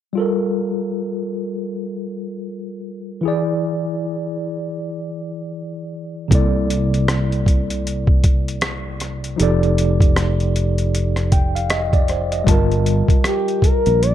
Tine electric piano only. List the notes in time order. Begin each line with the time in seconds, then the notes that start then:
0.13 G3 F4
0.17 A4 A#4
3.21 E3 E4
3.25 G#4 D5
6.28 C3 A#3 E4
6.33 A4 D5
9.36 F3 D#4 G4
9.41 A4 D5
11.32 G5
11.55 F5
11.70 D#5
11.94 D5
12.09 C5
12.32 D#5
12.44 G3 F4
12.49 A#4 A5